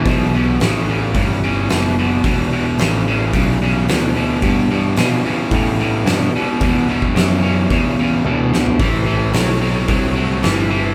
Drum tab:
HH |o---o---o---o---|o---o---o---o---|o---o---o---o---|o---o---o-------|
SD |----o-------o---|----o-------o---|----o-------o---|----o---------o-|
T1 |----------------|----------------|----------------|------------o---|
FT |----------------|----------------|----------------|---------------o|
BD |o-------o-------|o-------o-------|o-------o-------|o--o----o-------|

HH |o---o---o---o---|
SD |----o-------o---|
T1 |----------------|
FT |----------------|
BD |o-------o-------|